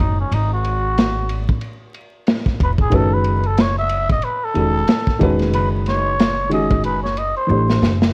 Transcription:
Already playing: D#3 G#3 C#4 D#4 F#4 C#5
0.00 F#1
0.20 C#4
0.31 G#1 D#4, ride
0.54 F#4
0.64 ride
0.97 snare, hi-hat pedal, ride
1.29 ride
1.49 kick
1.61 ride
1.94 ride
2.27 snare, hi-hat pedal, ride
2.46 kick, snare
2.60 E1 B4, kick, ride
2.78 G#4, kick
2.90 F#1 D#3 G#3 C#4 F#4 B4, kick, ride
2.95 A4
3.14 B4
3.24 ride
3.44 A4, ride
3.58 C#5, snare, hi-hat pedal, ride
3.79 E5
3.89 ride
4.09 D#5, kick, ride
4.22 B4, ride
4.44 A4
4.54 E1 D#3 G#3 C#4 F#4, ride
4.58 A4
4.87 snare, hi-hat pedal, ride
5.07 kick, snare
5.19 E1 D#3 G#3 C#4 F#4 B4, kick, ride
5.39 snare, ride
5.52 F#1 B4, ride
5.86 C#5, snare, ride
6.19 snare, hi-hat pedal, ride
6.49 D#3 G#3 C#4 F#4 G#4 D#5, ride
6.70 kick, ride
6.84 B4, ride
7.03 C#5, snare
7.17 D#5, ride
7.37 C5
7.47 A1 E3 A3 D4 G4
7.51 C5
7.70 snare
7.82 F#1, snare
8.02 snare

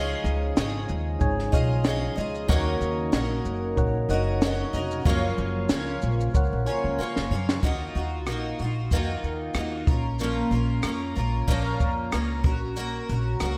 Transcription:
Already playing: C#2 C#3 F3 G#3 C#4 D#4 F4 G#4 C#5 D#5 F5
0.24 C#2, shaker
0.57 G#1 C#4 F4 G#4 D#5, snare, shaker
0.89 D#2, shaker
1.19 G#1 D#4 G#4 C#5 G#5, kick, shaker
1.39 snare
1.52 B1 D#4 F4 G#4 C#5 D#5 F5, kick, shaker
1.84 C#4 F4 G#4 D#5, snare, shaker
2.16 C#2 F4 G#4 D#5, shaker
2.35 shaker
2.48 D#2 D#3 F#3 A#3 C#4 D#4 F#4 A#4 C#5 D#5 F#5, kick, shaker
2.81 D#2, shaker
3.12 A#1 C#4 F#4 A#4 D#5, snare, shaker
3.45 F#1, shaker
3.76 A#1 D#4 A#4 C#5 F#5, kick, shaker
4.09 F#1 C#4 D#4 F#4 A#4 C#5 D#5 F#5, shaker
4.41 C#4 F#4 A#4 D#5, snare, shaker
4.73 F1 C#4 F#4 A#4 D#5, shaker
4.91 shaker
5.05 F#1 F#2 C#3 F3 A#3 C#4 F4 A#4 C#5 F5, kick, shaker
5.38 F#1, shaker
5.69 C#2 A#3 C#4 F4 C#5, snare, shaker
6.02 A#1, shaker
6.21 shaker
6.34 C#2 F4 A#4 C#5 F#5, kick, shaker
6.53 A#1
6.65 C#4 F4 A#4 C#5 G#5, shaker
6.69 A#3
6.84 C#2
6.99 A#3 C#4 F4 C#5, muted upright bass stroke
7.16 F#1, snare
7.31 F#2 A#3 C#4 F4 C#5
7.49 snare
7.63 D#2 D#3 A#3 D#4 F4 F#4, kick, shaker
7.95 D#2 D#4 F4 F#4, shaker
8.27 A#1 A#3 D#4 F4 F#4, cross-stick, shaker
8.59 A#1 D#4 F4 F#4, shaker
8.91 F2 D#3 A#3 D#4 F4 F#4, kick, shaker
9.23 D#2, shaker
9.54 D#2 A#3 D#4 F4 F#4, cross-stick, shaker
9.87 A#1 A#3 C#4 F4 A#4, kick, shaker
10.19 A#2 F3 A#3 C#4 F4 A#4, shaker
10.51 A#1 A#3 C#4 F4 A#4, shaker
10.83 F2 A#3 C#4 F4 A#4, cross-stick, shaker
11.15 A#1 A#3 C#4 F4 A#4, shaker
11.47 A#1 A#2 F3 A#3 C#4 F4 A#4, kick, shaker
11.66 cross-stick
11.80 F2, kick, shaker
12.12 C#2 A#3 C#4 F4 A#4, cross-stick, shaker
12.44 A#1 C#4 F#4 A#4, kick, shaker
12.76 A#3 C#4 F#4 A#4, shaker
13.09 A#1 C#4 F#4 A#4, shaker
13.40 C#2 A#3 C#4 F#4 A#4, cross-stick, shaker

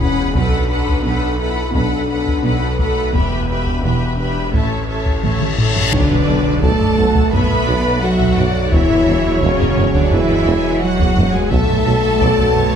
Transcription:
Already playing: E1 E2
0.00 C#4 G#4 B4 F#5 B5, taiko
0.35 B1 B2 D4 A4 B4 F#5 B5, taiko
0.70 A4 B4 F#5 B5
0.88 taiko
1.05 B1 B2 A4 B4 F#5 B5
1.39 E4 A4 B4 F#5 B5
1.74 B1 B2 D4 A4 B4 F#5 B5, taiko
2.09 A4 B4 F#5 B5
2.27 taiko
2.44 B1 B2 A4 B4 F#5 B5
2.79 A3 A4 B4 F#5 B5, taiko
3.13 E1 E2 B3 G4 B4 E5 B5, taiko, reverse cymbal
3.49 G4 B4 E5 B5
3.67 taiko
3.84 E1 E2 G4 B4 E5 B5
4.17 D4 G4 B4 E5 B5
4.53 A1 A2 C#4 A4 C#5 E5 A5, taiko
4.89 A4 C#5 E5 A5
5.06 taiko
5.23 A1 A2 A4 C#5 E5 A5, taiko mid
5.41 taiko mid
5.58 A4 C#5 E5 A5, taiko low-mid
5.75 taiko low
5.92 B1 D3 F#3 A3 D4 B4 D5, taiko, impact
6.10 B1, taiko low
6.28 B1
6.46 B1
6.62 B1 A3 A4 D5 A5, taiko
6.80 B1, taiko low
6.97 B1 F#5, taiko low
7.15 B1, taiko
7.32 B1 B3 B4 E5 B5, taiko low
7.50 B1, taiko low
7.67 B1 D5
8.03 F#3 F#4 E5 F#5
8.20 B1, taiko
8.37 B1 D5, taiko low
8.55 B1
8.72 E1 E2 E3 G#3 E4 C#5 E5, taiko
8.90 E2, taiko low
9.07 E1 E2
9.25 E2
9.42 E1 E2 C#3 C#4 C#5, taiko
9.59 E2, taiko low
9.77 E1 E2, taiko low
9.94 E2 D3 D4 D5, taiko
10.11 E1 E2 E3 E4 B4 E5, taiko low
10.29 E2, taiko low
10.46 E1 E2 G#5
10.81 F#3 F#4 F#5
10.99 E2, taiko
11.16 E1 E2, taiko low
11.33 E2 G#3 G#4 G#5
11.51 B1 F#3 A3 B3 A4 E5 A5, taiko
11.69 B1, taiko low
11.86 B1
12.05 B1
12.21 B1 D5, taiko
12.39 B1, taiko low
12.56 B1 C#5, taiko low

